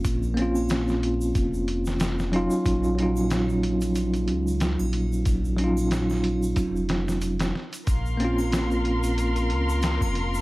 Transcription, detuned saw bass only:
X:1
M:4/4
L:1/16
Q:"Swing 16ths" 1/4=92
K:Ebdor
V:1 name="Detuned saw bass" clef=bass
B,,,8 F,,,6- F,,, z | B,,,8- B,,,2 D,,3 B,,,3 | B,,,8 F,,,2 F,,,4 z2 | B,,,8- B,,,2 D,,3 F,,,3 |]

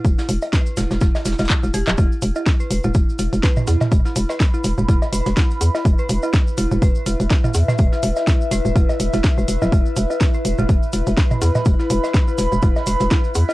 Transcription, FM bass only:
X:1
M:4/4
L:1/16
Q:"Swing 16ths" 1/4=124
K:Clyd
V:1 name="FM bass" clef=bass
E,,, z E,,, z3 E,,, E,,, E,,, z E,,, E,,, z E,,, E,,, D,,, | E,,, z E,,, z3 E,,, E,,, E,,, z E,,, E,,, z2 E,, z | E,,, z E,,, z3 E,,, E,,, E,,, z E,,, E,,, z2 E,, z | E,,, z E,,, z3 E,,, E,,, E,,, z E,,, E,,, z2 E,, z |
E,,, z E,,, z3 E,,, E,,, E,,, z E,,, E,,, z E,,, E,,, D,,, | E,,, z E,,, z3 E,,, E,,, E,,, z E,,, E,,, z2 E,, z | E,,, z E,,, z3 E,,, E,,, E,,, z E,,, E,,, z2 E,, z |]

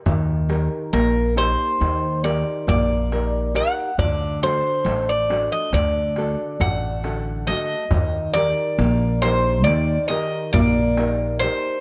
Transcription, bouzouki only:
X:1
M:9/8
L:1/16
Q:3/8=46
K:none
V:1 name="Bouzouki"
z4 _B2 c4 d2 d4 ^f2 | d2 c3 d2 _e d4 ^f4 e2- | _e2 d4 c2 d2 e2 d4 c2 |]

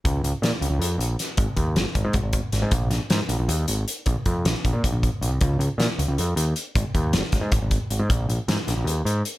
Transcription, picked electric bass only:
X:1
M:7/8
L:1/16
Q:1/4=156
K:Db
V:1 name="Picked electric bass" clef=bass
D,,2 D,, z B,, z D,, D,, F,,2 B,,,2 z2 | A,,, z E,,2 A,,, z A,,, A,, A,,, A,,,2 z A,,, A,, | B,,,2 B,,, z A,, z B,,, B,,, E,,2 A,,,2 z2 | B,,, z F,,2 B,,, z B,,, B,, B,,, B,,,2 z B,,, C,, |
D,,2 D,, z B,, z D,, D,, F,,2 E,,2 z2 | A,,, z E,,2 A,,, z A,,, A,, A,,, A,,,2 z A,,, A,, | B,,,2 B,,, z A,, z B,,, B,,, E,,2 A,,2 z2 |]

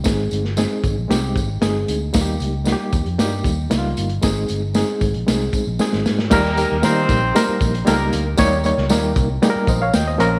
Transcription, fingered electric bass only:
X:1
M:4/4
L:1/16
Q:1/4=115
K:Ebmix
V:1 name="Fingered electric bass" clef=bass
A,,,2 G,,,3 z A,,, B,,, C,,2 A,,,2 G,,,2 =D,,2 | E,,2 D,,3 z E,, F,, G,,2 E,,2 D,,2 G,,,2 | A,,,2 G,,,3 z A,,, B,,, C,,2 z B,,, z A,,, A,,2 | E,,3 E,, E,2 B,,,2 z2 B,,,2 D,,2 =D,,2 |
E,,3 D,, E,,2 C,,2 z2 B,,,2 E,,2 B,,,2 |]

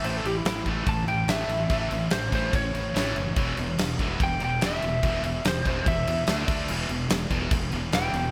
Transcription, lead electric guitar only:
X:1
M:4/4
L:1/16
Q:1/4=145
K:A
V:1 name="Lead electric guitar"
=c A =G E E2 z2 a2 =g2 e4- | e4 =c2 c2 ^c8- | c4 z4 =g2 g2 e4- | e4 =c2 c2 e8- |
e4 z8 =g4 |]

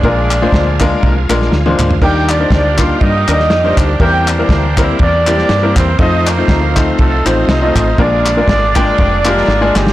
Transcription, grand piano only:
X:1
M:4/4
L:1/16
Q:"Swing" 1/4=120
K:Bbmix
V:1 name="Grand piano"
[A,B,DFB]2 z [A,B,DFc]2 z [A,B,DFB]3 z [A,B,DFB]2 z [A,B,DFc]2 z | [G,B,DEB]2 z [G,B,DEc]2 z [G,B,DEF]3 z [G,B,DEB]2 z [G,B,DEc]2 z | [G,B,C=EB]2 z [G,B,CEB]2 z [G,B,CEB]3 z [G,B,CEG]2 z [G,B,CEB]2 z | [=A,CEFc]2 z [A,CEFc]2 z [A,CEFc]3 z [A,CEFc]2 z [A,CEFe]2 z |
[A,B,DFB]2 z [A,B,DFB]2 z [A,B,DFg]3 z [A,B,DFG]2 z [A,B,DFA]2 z |]
V:2 name="Grand piano" clef=bass
B,,6 z8 z2 | E,6 z8 z2 | =E,6 z8 z2 | z16 |
B,,6 z8 z2 |]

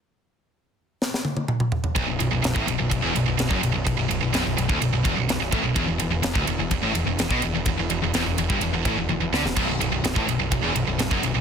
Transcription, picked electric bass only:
X:1
M:4/4
L:1/16
Q:1/4=126
K:Edor
V:1 name="Picked electric bass" clef=bass
z16 | B,,,, B,,,, B,,,, B,,,, B,,,, A,,, B,,,, B,,,, B,,,, E,,, B,,,, B,,,, B,,,, F,,, B,,,, B,,,, | B,,,, B,,,, B,,,, B,,,, B,,,, B,,,, B,,,, D,,, B,,,, B,,,, E,,, B,,,, B,,,, B,,,, A,,, B,,,, | E,,, E,,, E,,, E,,, E,,, D,,, E,,, E,,, E,,, A,,, E,,, E,,, E,,, B,,, E,,, E,,, |
E,,, E,,, E,,, E,,, E,,, E,,, E,,, G,,, E,,, E,,, A,,, E,,, E,,, E,,, D,, E,,, | B,,,, B,,,, B,,,, B,,,, B,,,, A,,, B,,,, B,,,, B,,,, E,,, B,,,, B,,,, B,,,, F,,, B,,,, B,,,, |]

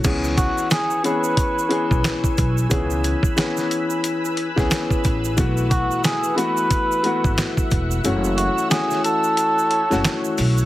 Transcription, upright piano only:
X:1
M:4/4
L:1/16
Q:"Swing 16ths" 1/4=90
K:C#m
V:1 name="Upright piano"
[E,B,CG]6 [E,B,CG]4 [E,B,CG]6 | [E,B,CG]4 [E,B,CG]6 z [E,B,CG]4- [E,B,CG] | [E,A,B,F]6 [E,A,B,F]4 [E,A,B,F]6 | [E,A,CF]4 [E,A,CF]6 z [E,A,CF]4- [E,A,CF] |]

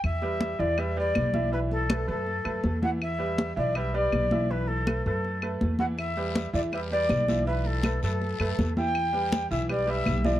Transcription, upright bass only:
X:1
M:4/4
L:1/8
Q:1/4=162
K:Em
V:1 name="Upright bass" clef=bass
E,,3 E,,3 B,,,2- | B,,,3 F,,2 F,, E,,2- | E,,3 B,,,3 B,,,2- | B,,,3 F,,3 E,,2- |
E,,3 E,,3 B,,,2- | B,,,3 F,,2 F,, E,,2- | E,,3 B,,,3 B,,,2 |]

